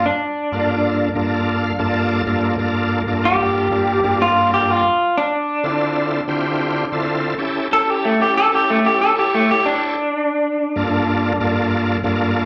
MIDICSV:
0, 0, Header, 1, 3, 480
1, 0, Start_track
1, 0, Tempo, 640342
1, 1705, Time_signature, 4, 2, 24, 8
1, 9334, End_track
2, 0, Start_track
2, 0, Title_t, "Clean electric guitar"
2, 0, Program_c, 0, 27
2, 43, Note_on_c, 0, 62, 94
2, 1444, Note_off_c, 0, 62, 0
2, 2439, Note_on_c, 0, 67, 113
2, 3131, Note_off_c, 0, 67, 0
2, 3162, Note_on_c, 0, 65, 92
2, 3387, Note_off_c, 0, 65, 0
2, 3402, Note_on_c, 0, 67, 91
2, 3527, Note_off_c, 0, 67, 0
2, 3527, Note_on_c, 0, 65, 93
2, 3863, Note_off_c, 0, 65, 0
2, 3879, Note_on_c, 0, 62, 93
2, 5283, Note_off_c, 0, 62, 0
2, 5795, Note_on_c, 0, 69, 109
2, 5923, Note_off_c, 0, 69, 0
2, 5923, Note_on_c, 0, 67, 98
2, 6028, Note_off_c, 0, 67, 0
2, 6036, Note_on_c, 0, 57, 84
2, 6153, Note_off_c, 0, 57, 0
2, 6160, Note_on_c, 0, 67, 71
2, 6267, Note_off_c, 0, 67, 0
2, 6278, Note_on_c, 0, 69, 106
2, 6394, Note_off_c, 0, 69, 0
2, 6410, Note_on_c, 0, 67, 93
2, 6511, Note_off_c, 0, 67, 0
2, 6524, Note_on_c, 0, 57, 90
2, 6637, Note_off_c, 0, 57, 0
2, 6643, Note_on_c, 0, 67, 104
2, 6748, Note_off_c, 0, 67, 0
2, 6757, Note_on_c, 0, 69, 101
2, 6873, Note_off_c, 0, 69, 0
2, 6888, Note_on_c, 0, 67, 95
2, 6991, Note_off_c, 0, 67, 0
2, 7005, Note_on_c, 0, 57, 94
2, 7117, Note_off_c, 0, 57, 0
2, 7129, Note_on_c, 0, 67, 103
2, 7231, Note_off_c, 0, 67, 0
2, 7239, Note_on_c, 0, 62, 110
2, 8642, Note_off_c, 0, 62, 0
2, 9334, End_track
3, 0, Start_track
3, 0, Title_t, "Tonewheel organ"
3, 0, Program_c, 1, 16
3, 388, Note_on_c, 1, 43, 78
3, 393, Note_on_c, 1, 58, 71
3, 393, Note_on_c, 1, 62, 70
3, 396, Note_on_c, 1, 65, 69
3, 398, Note_on_c, 1, 69, 86
3, 814, Note_off_c, 1, 43, 0
3, 816, Note_off_c, 1, 58, 0
3, 816, Note_off_c, 1, 62, 0
3, 818, Note_off_c, 1, 65, 0
3, 819, Note_off_c, 1, 69, 0
3, 864, Note_on_c, 1, 43, 92
3, 865, Note_on_c, 1, 58, 92
3, 865, Note_on_c, 1, 62, 84
3, 870, Note_on_c, 1, 65, 87
3, 871, Note_on_c, 1, 69, 104
3, 1222, Note_on_c, 1, 77, 74
3, 1292, Note_off_c, 1, 43, 0
3, 1292, Note_off_c, 1, 58, 0
3, 1292, Note_off_c, 1, 62, 0
3, 1295, Note_off_c, 1, 65, 0
3, 1295, Note_off_c, 1, 69, 0
3, 1340, Note_off_c, 1, 77, 0
3, 1341, Note_on_c, 1, 43, 94
3, 1342, Note_on_c, 1, 58, 93
3, 1345, Note_on_c, 1, 62, 88
3, 1347, Note_on_c, 1, 65, 82
3, 1347, Note_on_c, 1, 81, 76
3, 1350, Note_on_c, 1, 69, 104
3, 1662, Note_off_c, 1, 43, 0
3, 1663, Note_off_c, 1, 58, 0
3, 1664, Note_off_c, 1, 62, 0
3, 1665, Note_off_c, 1, 65, 0
3, 1667, Note_off_c, 1, 69, 0
3, 1678, Note_off_c, 1, 81, 0
3, 1694, Note_on_c, 1, 43, 104
3, 1696, Note_on_c, 1, 58, 93
3, 1700, Note_on_c, 1, 65, 89
3, 1701, Note_on_c, 1, 62, 95
3, 1703, Note_on_c, 1, 69, 121
3, 1914, Note_off_c, 1, 43, 0
3, 1915, Note_off_c, 1, 58, 0
3, 1917, Note_off_c, 1, 65, 0
3, 1918, Note_off_c, 1, 62, 0
3, 1919, Note_off_c, 1, 69, 0
3, 1934, Note_on_c, 1, 43, 87
3, 1938, Note_on_c, 1, 62, 86
3, 1939, Note_on_c, 1, 58, 83
3, 1943, Note_on_c, 1, 65, 83
3, 1943, Note_on_c, 1, 69, 102
3, 2264, Note_off_c, 1, 43, 0
3, 2266, Note_off_c, 1, 58, 0
3, 2266, Note_off_c, 1, 62, 0
3, 2268, Note_off_c, 1, 65, 0
3, 2268, Note_off_c, 1, 69, 0
3, 2301, Note_on_c, 1, 43, 77
3, 2307, Note_on_c, 1, 58, 74
3, 2307, Note_on_c, 1, 62, 72
3, 2309, Note_on_c, 1, 65, 67
3, 2313, Note_on_c, 1, 69, 87
3, 2518, Note_off_c, 1, 43, 0
3, 2521, Note_off_c, 1, 58, 0
3, 2521, Note_off_c, 1, 62, 0
3, 2522, Note_off_c, 1, 65, 0
3, 2524, Note_off_c, 1, 69, 0
3, 2545, Note_on_c, 1, 43, 88
3, 2546, Note_on_c, 1, 58, 73
3, 2547, Note_on_c, 1, 62, 74
3, 2551, Note_on_c, 1, 65, 73
3, 2552, Note_on_c, 1, 69, 89
3, 2760, Note_off_c, 1, 43, 0
3, 2761, Note_off_c, 1, 58, 0
3, 2761, Note_off_c, 1, 62, 0
3, 2763, Note_off_c, 1, 65, 0
3, 2764, Note_off_c, 1, 69, 0
3, 2780, Note_on_c, 1, 43, 70
3, 2781, Note_on_c, 1, 58, 70
3, 2786, Note_on_c, 1, 62, 69
3, 2787, Note_on_c, 1, 65, 71
3, 2788, Note_on_c, 1, 69, 85
3, 2998, Note_off_c, 1, 43, 0
3, 2998, Note_off_c, 1, 58, 0
3, 3001, Note_off_c, 1, 62, 0
3, 3001, Note_off_c, 1, 65, 0
3, 3002, Note_off_c, 1, 69, 0
3, 3024, Note_on_c, 1, 43, 89
3, 3024, Note_on_c, 1, 58, 81
3, 3025, Note_on_c, 1, 62, 75
3, 3028, Note_on_c, 1, 65, 76
3, 3032, Note_on_c, 1, 69, 89
3, 3622, Note_off_c, 1, 43, 0
3, 3622, Note_off_c, 1, 58, 0
3, 3622, Note_off_c, 1, 62, 0
3, 3624, Note_off_c, 1, 65, 0
3, 3626, Note_off_c, 1, 69, 0
3, 4224, Note_on_c, 1, 50, 81
3, 4225, Note_on_c, 1, 60, 73
3, 4227, Note_on_c, 1, 64, 73
3, 4229, Note_on_c, 1, 65, 72
3, 4230, Note_on_c, 1, 69, 86
3, 4652, Note_off_c, 1, 50, 0
3, 4653, Note_off_c, 1, 60, 0
3, 4654, Note_off_c, 1, 64, 0
3, 4655, Note_off_c, 1, 65, 0
3, 4655, Note_off_c, 1, 69, 0
3, 4705, Note_on_c, 1, 50, 95
3, 4707, Note_on_c, 1, 60, 92
3, 4709, Note_on_c, 1, 64, 83
3, 4712, Note_on_c, 1, 65, 89
3, 4713, Note_on_c, 1, 67, 100
3, 5133, Note_off_c, 1, 50, 0
3, 5134, Note_off_c, 1, 60, 0
3, 5135, Note_off_c, 1, 64, 0
3, 5136, Note_off_c, 1, 65, 0
3, 5137, Note_off_c, 1, 67, 0
3, 5186, Note_on_c, 1, 50, 86
3, 5188, Note_on_c, 1, 60, 92
3, 5188, Note_on_c, 1, 64, 85
3, 5194, Note_on_c, 1, 65, 86
3, 5195, Note_on_c, 1, 69, 99
3, 5506, Note_off_c, 1, 50, 0
3, 5506, Note_off_c, 1, 60, 0
3, 5507, Note_off_c, 1, 64, 0
3, 5509, Note_off_c, 1, 65, 0
3, 5510, Note_off_c, 1, 69, 0
3, 5533, Note_on_c, 1, 61, 100
3, 5538, Note_on_c, 1, 64, 92
3, 5539, Note_on_c, 1, 67, 96
3, 5544, Note_on_c, 1, 69, 102
3, 5754, Note_off_c, 1, 61, 0
3, 5757, Note_off_c, 1, 64, 0
3, 5757, Note_off_c, 1, 67, 0
3, 5760, Note_off_c, 1, 69, 0
3, 5781, Note_on_c, 1, 61, 68
3, 5784, Note_on_c, 1, 64, 69
3, 5785, Note_on_c, 1, 67, 69
3, 5790, Note_on_c, 1, 69, 78
3, 6108, Note_off_c, 1, 61, 0
3, 6109, Note_off_c, 1, 64, 0
3, 6110, Note_off_c, 1, 67, 0
3, 6112, Note_off_c, 1, 69, 0
3, 6143, Note_on_c, 1, 61, 81
3, 6146, Note_on_c, 1, 64, 71
3, 6150, Note_on_c, 1, 67, 71
3, 6152, Note_on_c, 1, 69, 89
3, 6360, Note_off_c, 1, 61, 0
3, 6361, Note_off_c, 1, 64, 0
3, 6363, Note_off_c, 1, 67, 0
3, 6364, Note_off_c, 1, 69, 0
3, 6382, Note_on_c, 1, 61, 78
3, 6385, Note_on_c, 1, 64, 71
3, 6389, Note_on_c, 1, 67, 72
3, 6389, Note_on_c, 1, 69, 91
3, 6599, Note_off_c, 1, 61, 0
3, 6600, Note_off_c, 1, 64, 0
3, 6602, Note_off_c, 1, 67, 0
3, 6603, Note_off_c, 1, 69, 0
3, 6626, Note_on_c, 1, 61, 71
3, 6630, Note_on_c, 1, 64, 62
3, 6633, Note_on_c, 1, 67, 68
3, 6634, Note_on_c, 1, 69, 82
3, 6841, Note_off_c, 1, 61, 0
3, 6843, Note_off_c, 1, 64, 0
3, 6844, Note_off_c, 1, 67, 0
3, 6845, Note_off_c, 1, 69, 0
3, 6863, Note_on_c, 1, 73, 88
3, 6865, Note_on_c, 1, 64, 80
3, 6870, Note_on_c, 1, 67, 74
3, 6873, Note_on_c, 1, 69, 91
3, 7461, Note_off_c, 1, 73, 0
3, 7462, Note_off_c, 1, 64, 0
3, 7465, Note_off_c, 1, 67, 0
3, 7466, Note_off_c, 1, 69, 0
3, 8065, Note_on_c, 1, 43, 96
3, 8065, Note_on_c, 1, 58, 88
3, 8069, Note_on_c, 1, 62, 90
3, 8070, Note_on_c, 1, 65, 88
3, 8073, Note_on_c, 1, 69, 104
3, 8492, Note_off_c, 1, 43, 0
3, 8493, Note_off_c, 1, 58, 0
3, 8494, Note_off_c, 1, 62, 0
3, 8495, Note_off_c, 1, 65, 0
3, 8497, Note_off_c, 1, 69, 0
3, 8547, Note_on_c, 1, 43, 93
3, 8547, Note_on_c, 1, 58, 91
3, 8550, Note_on_c, 1, 62, 89
3, 8550, Note_on_c, 1, 65, 92
3, 8554, Note_on_c, 1, 69, 108
3, 8973, Note_off_c, 1, 43, 0
3, 8973, Note_off_c, 1, 58, 0
3, 8975, Note_off_c, 1, 62, 0
3, 8975, Note_off_c, 1, 65, 0
3, 8977, Note_off_c, 1, 69, 0
3, 9021, Note_on_c, 1, 43, 99
3, 9023, Note_on_c, 1, 58, 96
3, 9025, Note_on_c, 1, 62, 93
3, 9028, Note_on_c, 1, 69, 111
3, 9029, Note_on_c, 1, 65, 92
3, 9334, Note_off_c, 1, 43, 0
3, 9334, Note_off_c, 1, 58, 0
3, 9334, Note_off_c, 1, 62, 0
3, 9334, Note_off_c, 1, 65, 0
3, 9334, Note_off_c, 1, 69, 0
3, 9334, End_track
0, 0, End_of_file